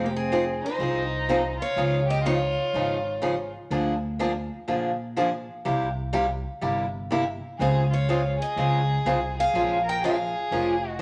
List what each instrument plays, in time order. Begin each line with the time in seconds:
Already playing: upright bass F1
0.04 violin A#3, steel-string acoustic guitar G4
0.14 violin C4, steel-string acoustic guitar G#4
0.32 steel-string acoustic guitar F3 C4 D#4 G#4
0.63 violin D#4, steel-string acoustic guitar C5
0.79 upright bass C2, steel-string acoustic guitar F3 C4 D#4 G#4
1.29 steel-string acoustic guitar F3 C4 D#4 G#4
1.60 violin F4, steel-string acoustic guitar C#5
1.76 upright bass C#2, steel-string acoustic guitar C#3 F3 D#4 G#4
2.08 violin G4, steel-string acoustic guitar D#5
2.24 steel-string acoustic guitar C#3 F3 D#4 G#4 C#5, violin F4
2.73 upright bass G#1, steel-string acoustic guitar C#3 F3 D#4 G#4
3.22 steel-string acoustic guitar C#3 F3 D#4 G#4
3.70 upright bass D2, steel-string acoustic guitar D3 F3 A#3 D4 G#4
4.19 steel-string acoustic guitar D3 F3 A#3 D4 G#4
4.68 upright bass A#2, steel-string acoustic guitar D3 F3 A#3 D4 G#4
5.16 steel-string acoustic guitar D3 F3 A#3 D4 G#4
5.65 upright bass C2, steel-string acoustic guitar C3 G3 A#3 E4 G4
6.13 steel-string acoustic guitar C3 G3 A#3 E4 G4
6.61 upright bass G1, steel-string acoustic guitar C3 G3 A#3 E4 G4
7.11 steel-string acoustic guitar C3 G3 A#3 E4 G4
7.59 upright bass C#2, steel-string acoustic guitar C#3 G#3 C4 F4 G#4 F5, violin G#4
7.90 violin F4, steel-string acoustic guitar C#5
8.09 steel-string acoustic guitar C#3 G#3 C4 F4 G#4
8.39 violin G#4, steel-string acoustic guitar D#5
8.56 upright bass C#2, steel-string acoustic guitar C#3 G#3 C4 F4 G#4
9.05 upright bass C2, steel-string acoustic guitar C#3 G#3 C4 F4 G#4
9.37 violin G#4, steel-string acoustic guitar F5
9.54 upright bass A#1, steel-string acoustic guitar F3 G#3 C#4 F4 A#4
9.85 violin A#4, steel-string acoustic guitar G5
10.03 steel-string acoustic guitar F3 G#3 C#4 F4 A#4 F5, violin G#4
10.51 upright bass F1, steel-string acoustic guitar F3 G#3 C#4 F4 A#4
10.89 violin F#4, steel-string acoustic guitar D#5